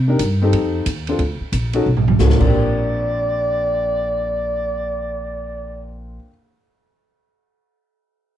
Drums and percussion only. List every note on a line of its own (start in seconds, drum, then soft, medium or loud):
0.19 kick soft
0.19 hi-hat pedal medium
0.19 ride medium
0.53 kick soft
0.53 ride medium
0.86 kick soft
0.86 hi-hat pedal medium
0.86 ride medium
1.07 ride soft
1.19 kick soft
1.19 ride soft
1.53 kick soft
1.53 hi-hat pedal medium
1.53 ride medium
1.73 ride soft
1.97 floor tom soft
2.08 floor tom medium
2.19 snare medium
2.19 hi-hat pedal medium
2.30 snare medium
2.40 kick soft
2.40 crash soft